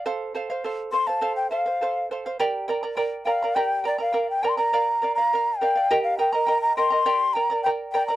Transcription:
<<
  \new Staff \with { instrumentName = "Quena" } { \time 2/4 \key g \minor \tempo 4 = 103 r4. c'''16 a''16~ | a''16 g''16 f''4 r8 | r4. f''8 | g''8 d''16 f''8 g''16 c'''16 bes''16~ |
bes''8. bes''8. g''8~ | g''16 f''16 g''16 bes''8 bes''16 c'''8~ | c'''8 bes''8 g''8 g''16 bes''16 | }
  \new Staff \with { instrumentName = "Charango" } { \time 2/4 \key g \minor <a' c'' f''>8 <a' c'' f''>16 <c'' f''>16 <a' c'' f''>8 <a' c'' f''>16 <c'' f''>16 | <a' c'' f''>8 <a' c'' f''>16 <c'' f''>16 <a' c'' f''>8 <a' c'' f''>16 <c'' f''>16 | <g' bes' d'' g'' bes''>8 <bes' d'' g'' bes''>16 <bes' d'' bes''>16 <bes' d'' g'' bes''>8 <bes' d'' g'' bes''>16 <bes' d'' bes''>16 | <g' bes' d'' g'' bes''>8 <bes' d'' g'' bes''>16 <bes' d'' bes''>16 <bes' d'' g'' bes''>8 <bes' d'' g'' bes''>16 <bes' d'' bes''>16 |
<bes' d'' f''>8 <bes' d'' f''>16 <d'' f''>16 <bes' d'' f''>8 <bes' d'' f''>16 <d'' f''>16 | <g' bes' ees'' g'' bes''>8 <bes' ees'' g'' bes''>16 <bes' ees'' bes''>16 <bes' ees'' g'' bes''>8 <bes' ees'' g'' bes''>16 <bes' ees'' bes''>16 | <g' bes' d'' g'' bes''>8 <bes' d'' g'' bes''>16 <bes' d'' bes''>16 <bes' d'' g'' bes''>8 <bes' d'' g'' bes''>16 <bes' d'' bes''>16 | }
>>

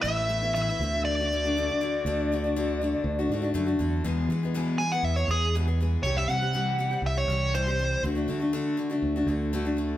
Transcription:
<<
  \new Staff \with { instrumentName = "Lead electric guitar" } { \time 4/4 \key d \lydian \tempo 4 = 120 e''4 e''4 d''2~ | d''2. r4 | r4. gis''16 fis''16 e''16 cis''16 gis'8 r4 | cis''16 e''16 fis''4. e''16 cis''8. c''4 |
r1 | }
  \new Staff \with { instrumentName = "Steel-string acoustic guitar" } { \time 4/4 \key d \lydian <a, e a b e'>8 <e a b e'>16 <a b e'>16 <a, e a b e'>16 <a b e'>16 <d a d' fis'>8. <a d' fis'>16 <d a d' fis'>16 <a d' fis'>16 <d a d' fis'>16 <a d' fis'>16 <d a d' fis'>8 | <d a d' fis'>8 <d a d' fis'>16 <a d' fis'>16 <d a d' fis'>8 <d a d' fis'>8. <a d' fis'>16 <d a d' fis'>16 <a d' fis'>16 <d a d' fis'>16 <a d' fis'>16 <d a d' fis'>8 | <e, b, e gis b gis'>8 <e gis b gis'>16 <e gis b gis'>16 <e, b, e gis b gis'>8 <e gis b gis'>16 <e gis b gis'>8 <e gis b gis'>16 <e gis b gis'>8 <e, b, e gis b gis'>16 <e gis b gis'>16 <e gis b gis'>8 | <c e g c' g'>16 <g c' g'>16 <e g c' g'>16 <g c' g'>16 <c e g c' g'>8 <e g c' g'>16 <g c' g'>8 <g c' g'>16 <e g c' g'>8 <c e g c' g'>16 <g c' g'>16 <e g c' g'>8 |
<d a d' fis'>16 <a d' fis'>16 <d a d' fis'>16 <a d' fis'>16 <d a d' fis'>8 <d a d' fis'>16 <a d' fis'>8 <a d' fis'>16 <d a d' fis'>8 <d a d' fis'>16 <a d' fis'>16 <d a d' fis'>8 | }
  \new Staff \with { instrumentName = "Fingered electric bass" } { \clef bass \time 4/4 \key d \lydian a,,4. d,2 r8 | d,2 d,8 gis,8 fis,8 e,8 | e,8 e4. e,8 e,4. | c,8 c4. c,8 c,4. |
d,8 d4. d,8 d,4. | }
>>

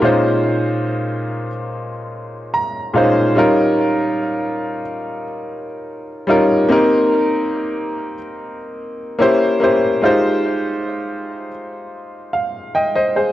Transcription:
\new Staff \with { instrumentName = "Grand piano" } { \time 4/4 \key f \minor \tempo 4 = 72 <bes, aes des' ees' f' c''>4.~ <bes, aes des' ees' f' c''>16 r4 r16 bes''8 <bes, aes des' ees' f' c'' f''>8 | <g des' ees' f' bes'>4.~ <g des' ees' f' bes'>16 r4. r16 <g des' ees' f' bes'>8 | <bes c' ees' g' bes'>4.~ <bes c' ees' g' bes'>16 r4 r16 <bes des' e' g' c''>8 <bes des' e' g' c''>8 | <aes ees' f' g' c''>4.~ <aes ees' f' g' c''>16 r4 f''8 <ees'' g''>16 <c'' ees''>16 <aes' c''>16 | }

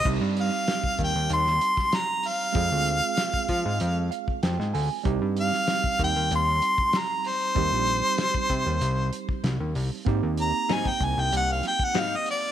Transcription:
<<
  \new Staff \with { instrumentName = "Harmonica" } { \time 4/4 \key c \minor \tempo 4 = 96 r8 f''4 g''8 c'''4 bes''8 f''8~ | f''2~ f''8 r4. | r8 f''4 g''8 c'''4 bes''8 c''8~ | c''2~ c''8 r4. |
r8 bes''8 aes''16 g''16 aes''16 g''16 fis''16 f''16 g''16 fis''16 f''16 ees''16 d''8 | }
  \new Staff \with { instrumentName = "Tine electric piano" } { \time 4/4 \key c \minor << { r1 | r2 r8 f''8 g''8 aes''8 | r1 | r1 |
r1 | } \\ { <g c' ees' g'>1 | <aes c' f' aes'>1 | <g c' ees' g'>1 | <g c' ees' g'>1 |
<bes c' ees' g'>1 | } >> }
  \new Staff \with { instrumentName = "Clean electric guitar" } { \time 4/4 \key c \minor r1 | r1 | r1 | r1 |
r4 <aes, g c' ees'>8 r4. <aes, g c' ees'>8 r8 | }
  \new Staff \with { instrumentName = "Analog synth bass" } { \clef bass \time 4/4 \key c \minor c,16 g,8 r8 c,16 ees,16 ees,16 ees,8 r4. | f,16 d,8 r8. f16 aes,16 f,8 r8 f,16 aes,16 d,16 r16 | c,16 g,8 r8 c,16 ees,16 ees,16 ees,8 r4. | ees,16 bes,,8 r8. c16 ees,16 c,8 r8 c,16 ees,16 c,16 r16 |
aes,,16 ees,8 r8 aes,,16 c,16 c,16 c,8 r4. | }
  \new DrumStaff \with { instrumentName = "Drums" } \drummode { \time 4/4 <cymc bd>8 hh8 <hh sn>16 bd16 <hh bd>8 hh16 sn16 hh16 <bd sn>16 <hh sn>8 hho8 | <hh bd>8 hh8 <hh sn>16 bd16 <hh bd>8 hh8 hh16 bd16 <hh sn>16 sn16 hho8 | <hh bd>8 hh16 sn16 <hh sn>16 bd16 <hh bd>8 hh8 hh16 bd16 <hh sn>8 hho8 | <hh bd>8 hh8 <hh sn>16 bd16 <hh bd>8 hh8 hh16 bd16 <hh sn>8 hho8 |
<hh bd>8 hh8 <hh sn>16 bd16 <hh bd>8 hh8 <hh sn>16 bd16 <hh sn>8 hho8 | }
>>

